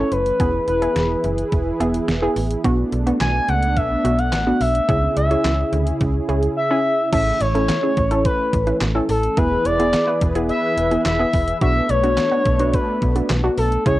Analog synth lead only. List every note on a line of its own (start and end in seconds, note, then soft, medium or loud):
0.00 0.13 C#5 loud
0.12 0.67 B4 loud
0.68 1.48 B4 medium
3.20 3.50 G#5 loud
3.49 3.78 F#5 loud
3.77 4.20 E5 loud
4.19 4.62 F#5 loud
4.61 5.16 E5 loud
5.17 5.97 E5 medium
6.57 7.09 E5 loud
7.13 7.42 E5 loud
7.41 8.24 C#5 loud
8.25 8.77 B4 medium
9.09 9.39 A4 medium
9.37 9.67 B4 loud
9.65 10.21 D5 loud
10.49 11.02 E5 loud
11.06 11.58 E5 loud
11.62 11.91 E5 loud
11.90 12.75 C#5 loud
12.74 13.30 B4 medium
13.58 13.84 A4 medium
13.86 13.99 C#5 loud